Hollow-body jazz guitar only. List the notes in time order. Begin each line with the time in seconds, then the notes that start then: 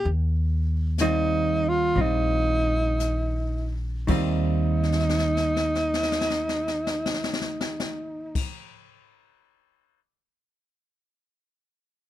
1.00 D#3 G3 C4 F4
1.95 G3 C4 F4
4.07 D#3 G3 C4 F4